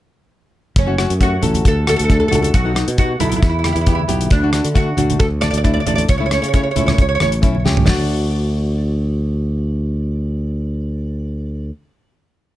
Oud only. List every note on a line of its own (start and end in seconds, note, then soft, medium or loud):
0.78 1.22 C#4 medium
1.23 1.67 F#4 medium
1.68 1.88 A4 medium
1.89 1.95 A4 loud
1.96 2.03 A4 medium
2.04 2.10 A4 medium
2.11 2.19 A4 medium
2.20 2.27 A4 medium
2.28 2.34 A4 medium
2.35 2.41 A4 medium
2.42 2.49 A4 medium
2.55 2.98 F#4 medium
2.99 3.20 F#4 medium
3.20 3.28 E4 medium
3.29 3.35 E4 soft
3.36 3.41 E4 soft
3.43 3.48 E4 soft
3.49 3.57 E4 soft
3.59 3.64 E4 soft
3.65 3.71 E4 medium
3.73 3.80 E4 soft
3.81 3.87 E4 soft
3.89 3.94 E4 soft
3.95 4.02 E4 medium
4.32 4.73 D4 medium
4.76 5.19 F#4 medium
5.20 5.26 A4 medium
5.41 5.49 D5 loud
5.51 5.56 D5 medium
5.58 5.63 D5 medium
5.64 5.72 D5 medium
5.74 5.79 D5 medium
5.80 5.86 D5 medium
5.87 5.94 D5 medium
5.95 6.03 D5 medium
6.09 6.17 C#5 medium
6.18 6.24 C#5 medium
6.26 6.32 C#5 medium
6.33 6.40 C#5 medium
6.42 6.47 C#5 medium
6.48 6.54 C#5 medium
6.55 6.62 C#5 medium
6.63 6.70 C#5 soft
6.71 6.77 C#5 soft
6.79 6.85 C#5 soft
6.86 6.93 C#5 medium
6.94 7.00 C#5 soft
7.02 7.07 C#5 medium
7.09 7.14 C#5 medium
7.15 7.21 C#5 medium
7.22 7.30 C#5 medium
7.86 11.68 D5 medium